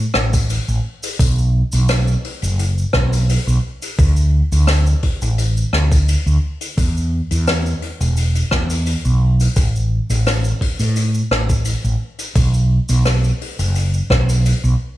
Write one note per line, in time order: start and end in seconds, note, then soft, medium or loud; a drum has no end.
0.14 0.57 A1 medium
0.14 cross-stick medium
0.33 kick medium
0.33 open hi-hat medium
0.33 cabasa medium
0.50 open hi-hat medium
0.50 cabasa medium
0.68 0.79 A1 medium
0.68 cabasa soft
1.03 open hi-hat medium
1.03 cabasa medium
1.19 1.62 B1 medium
1.19 kick loud
1.19 open hi-hat medium
1.19 cabasa medium
1.38 cabasa soft
1.72 2.14 B1 medium
1.72 open hi-hat medium
1.72 cabasa medium
1.89 cross-stick medium
1.89 open hi-hat medium
1.89 cabasa medium
2.08 cabasa medium
2.24 open hi-hat medium
2.42 2.84 F#1 medium
2.42 open hi-hat medium
2.42 cabasa medium
2.59 open hi-hat medium
2.59 cabasa medium
2.78 cabasa soft
2.93 3.36 B1 medium
2.93 kick loud
2.93 cross-stick medium
3.13 open hi-hat medium
3.13 cabasa medium
3.29 open hi-hat medium
3.29 cabasa medium
3.47 3.58 B1 medium
3.47 cabasa medium
3.82 open hi-hat medium
3.82 cabasa medium
3.98 4.41 D2 loud
3.98 kick loud
3.98 open hi-hat medium
3.98 cabasa medium
4.17 cabasa medium
4.52 4.93 D2 medium
4.52 open hi-hat medium
4.52 cabasa medium
4.67 cross-stick medium
4.67 open hi-hat medium
4.67 cabasa medium
4.86 cabasa medium
5.03 kick medium
5.03 open hi-hat medium
5.22 5.63 A1 medium
5.22 open hi-hat medium
5.22 cabasa medium
5.38 open hi-hat medium
5.38 cabasa medium
5.57 cabasa soft
5.73 6.15 D2 medium
5.73 cross-stick medium
5.92 kick medium
5.92 open hi-hat medium
5.92 cabasa medium
6.08 open hi-hat medium
6.08 cabasa medium
6.26 6.37 D2 medium
6.26 cabasa soft
6.61 open hi-hat medium
6.61 cabasa medium
6.77 7.20 E2 loud
6.77 kick loud
6.77 open hi-hat medium
6.77 cabasa medium
6.97 cabasa soft
7.31 7.73 E2 medium
7.31 open hi-hat medium
7.31 cabasa medium
7.47 cross-stick medium
7.47 open hi-hat medium
7.47 cabasa medium
7.66 cabasa soft
7.82 open hi-hat medium
8.01 8.42 E1 medium
8.01 open hi-hat medium
8.01 cabasa medium
8.17 open hi-hat medium
8.17 cabasa medium
8.35 open hi-hat medium
8.35 cabasa medium
8.51 8.94 E2 medium
8.51 kick loud
8.51 cross-stick medium
8.70 open hi-hat medium
8.70 cabasa medium
8.86 open hi-hat medium
8.86 cabasa medium
9.05 9.47 B1 medium
9.05 cabasa medium
9.40 open hi-hat medium
9.40 cabasa medium
9.56 9.99 A1 medium
9.56 kick loud
9.56 open hi-hat medium
9.56 cabasa medium
9.76 cabasa soft
10.10 10.51 A1 medium
10.10 open hi-hat medium
10.10 cabasa medium
10.27 cross-stick medium
10.27 open hi-hat medium
10.27 cabasa medium
10.44 cabasa medium
10.61 kick medium
10.61 open hi-hat medium
10.79 11.21 A2 medium
10.79 open hi-hat medium
10.79 cabasa medium
10.96 open hi-hat medium
10.96 cabasa medium
11.14 cabasa soft
11.31 11.73 A1 medium
11.31 cross-stick medium
11.49 kick medium
11.49 open hi-hat medium
11.49 cabasa medium
11.65 open hi-hat medium
11.65 cabasa medium
11.84 11.95 A1 medium
11.84 cabasa soft
12.19 open hi-hat medium
12.19 cabasa medium
12.35 12.78 B1 loud
12.35 kick loud
12.35 open hi-hat medium
12.35 cabasa medium
12.54 cabasa soft
12.89 13.31 B1 medium
12.89 open hi-hat medium
12.89 cabasa medium
13.05 cross-stick medium
13.05 open hi-hat medium
13.05 cabasa medium
13.24 cabasa soft
13.41 open hi-hat medium
13.59 14.00 F#1 medium
13.59 open hi-hat medium
13.59 cabasa medium
13.75 open hi-hat medium
13.75 cabasa medium
13.94 cabasa medium
14.10 14.52 B1 medium
14.10 kick loud
14.10 cross-stick medium
14.29 open hi-hat medium
14.29 cabasa medium
14.46 open hi-hat medium
14.46 cabasa medium
14.64 14.74 B1 loud
14.64 cabasa soft